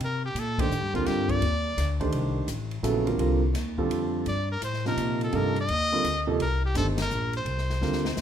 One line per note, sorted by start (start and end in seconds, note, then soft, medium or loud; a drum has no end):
0.00 0.34 C3 medium
0.00 ride medium
0.04 0.24 A#4 medium
0.25 0.41 G4 medium
0.35 0.69 A#2 medium
0.35 hi-hat pedal soft
0.35 ride medium
0.39 0.62 A4 medium
0.58 0.70 D#3 medium
0.58 0.70 A3 soft
0.58 0.70 D4 soft
0.58 0.70 G4 soft
0.58 0.95 G4 medium
0.58 0.70 C5 medium
0.58 kick medium
0.58 ride medium
0.70 0.82 A2 medium
0.70 hi-hat pedal medium
0.82 0.94 G2 soft
0.94 1.05 D#2 medium
0.94 1.39 D3 medium
0.94 1.39 G3 medium
0.94 1.39 C4 medium
0.94 1.40 F4 medium
0.94 1.08 F4 medium
0.94 1.40 A#4 medium
0.94 kick soft
0.94 ride soft
1.06 1.41 G2 medium
1.06 1.32 G4 medium
1.06 snare soft
1.06 ride medium
1.29 2.01 D5 medium
1.29 kick soft
1.29 ride soft
1.41 1.76 D#2 medium
1.41 ride medium
1.77 2.11 D2 medium
1.77 snare soft
1.77 hi-hat pedal soft
1.77 ride medium
2.00 2.46 D#3 medium
2.00 2.46 A3 medium
2.00 2.46 D4 medium
2.00 2.46 G4 medium
2.00 2.46 C5 medium
2.00 kick soft
2.00 ride soft
2.12 2.46 C2 medium
2.12 ride medium
2.47 2.82 A1 medium
2.47 hi-hat pedal medium
2.47 ride medium
2.71 ride soft
2.83 3.18 A#1 medium
2.83 3.05 C#3 medium
2.83 3.05 F#3 medium
2.83 3.05 B3 medium
2.83 3.05 E4 medium
2.83 3.05 A4 medium
2.83 hi-hat pedal soft
2.83 ride medium
3.06 3.18 D3 medium
3.06 3.18 G3 soft
3.06 3.18 C4 medium
3.06 3.18 F4 soft
3.06 3.18 A#4 medium
3.06 ride soft
3.18 3.53 C2 medium
3.18 3.40 D3 medium
3.18 3.40 G3 medium
3.18 3.40 C4 soft
3.18 3.41 F4 medium
3.18 3.41 A#4 medium
3.18 ride soft
3.54 3.88 D#2 medium
3.54 snare soft
3.54 hi-hat pedal soft
3.54 ride medium
3.78 4.24 D3 medium
3.78 4.24 G3 medium
3.78 4.24 C4 medium
3.78 4.24 F4 medium
3.78 4.24 A4 medium
3.78 kick soft
3.89 4.24 F2 medium
3.89 ride medium
4.26 4.61 G2 medium
4.26 4.49 D5 medium
4.26 ride soft
4.52 4.62 A#4 medium
4.61 4.96 A2 medium
4.61 4.85 C5 medium
4.61 hi-hat pedal medium
4.61 ride medium
4.73 snare soft
4.85 5.31 C3 medium
4.85 5.31 F3 medium
4.85 5.31 A#3 medium
4.85 5.31 D#4 soft
4.85 5.31 A#4 medium
4.85 5.19 A#4 medium
4.85 snare soft
4.97 5.32 A#2 medium
4.97 hi-hat pedal soft
4.97 ride medium
5.21 5.37 A4 medium
5.21 ride soft
5.33 5.68 G2 medium
5.33 5.54 C3 medium
5.33 5.54 F3 medium
5.33 5.54 A#3 medium
5.33 5.54 D#4 medium
5.33 5.54 A4 medium
5.33 5.58 A#4 medium
5.33 ride soft
5.56 ride soft
5.61 6.26 D#5 loud
5.68 6.03 D#2 medium
5.68 ride medium
5.92 6.03 D3 medium
5.92 6.03 G3 soft
5.92 6.03 C4 medium
5.92 6.03 F4 medium
5.92 6.03 A#4 medium
6.04 6.39 D2 medium
6.04 hi-hat pedal soft
6.04 ride medium
6.27 6.38 C3 medium
6.27 6.38 F3 medium
6.27 6.39 A#3 medium
6.27 6.39 D#4 medium
6.27 6.39 A4 medium
6.40 6.74 C2 medium
6.40 6.63 A#4 medium
6.40 ride medium
6.66 6.76 G4 medium
6.75 7.09 G1 medium
6.75 6.96 D#3 soft
6.75 6.96 A3 soft
6.75 6.96 D4 soft
6.75 6.96 G4 soft
6.75 6.87 A4 medium
6.75 6.96 C5 medium
6.75 hi-hat pedal medium
6.75 ride medium
6.98 snare medium
6.98 ride medium
7.02 7.33 A#4 medium
7.10 7.44 A#1 medium
7.10 hi-hat pedal soft
7.33 8.21 C5 medium
7.33 ride soft
7.45 7.80 C2 medium
7.45 ride soft
7.58 snare soft
7.70 snare soft
7.81 8.16 D2 medium
7.81 8.03 D3 medium
7.81 8.03 G3 soft
7.81 8.03 C4 medium
7.81 8.03 F4 soft
7.81 8.03 A#4 medium
7.81 snare soft
7.93 snare soft
8.05 snare medium
8.17 8.21 D#2 medium
8.17 snare medium
8.17 hi-hat pedal medium